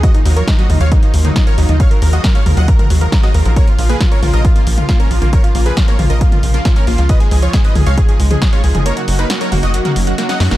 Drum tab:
HH |xxoxxxoxxxoxxxox|xxoxxxoxxxoxxxox|xxoxxxoxxxoxxxox|xxoxxxoxxxoxxxox|
SD |----o-------o---|----o-------oo--|----o-------o---|----o-------oo--|
T2 |------o----o---o|------o--o------|------o----o---o|------o--o------|
BD |o---o---o---o---|o---o---o---o---|o---o---o---o---|o---o---o---o---|

HH |xxoxxxoxxxoxxxox|xxoxxxoxxxoxxxox|
SD |----o-------o---|----o-------oooo|
T2 |------o----o---o|------o--o------|
BD |o---o---o---o---|----------------|